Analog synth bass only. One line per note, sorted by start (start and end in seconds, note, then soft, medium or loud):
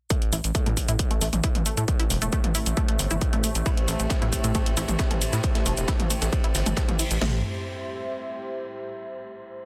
0.33 0.40 A1 medium
0.44 0.51 A1 medium
0.66 0.73 A2 medium
0.88 0.96 A2 medium
1.21 1.29 A1 medium
1.33 1.40 A1 medium
1.55 1.62 A1 medium
1.77 1.85 A2 medium
2.10 2.18 E1 loud
2.22 2.29 E1 medium
2.44 2.51 A1 medium
2.66 2.73 A1 medium
2.99 3.07 G1 medium
3.11 3.18 G1 medium
3.33 3.40 A1 medium
3.55 3.62 A1 medium
3.88 3.96 A1 loud
4.00 4.07 A1 medium
4.22 4.29 A2 medium
4.44 4.51 A2 medium
4.77 4.85 A1 medium
4.89 4.96 A1 medium
5.11 5.18 A1 medium
5.33 5.40 A2 medium
5.66 5.74 E1 loud
5.77 5.85 E1 medium
6.00 6.07 A1 medium
6.22 6.29 A1 medium
6.55 6.62 G1 medium
6.66 6.73 G1 medium
6.88 6.96 A1 medium
7.11 7.18 A1 medium
7.21 7.42 A1 medium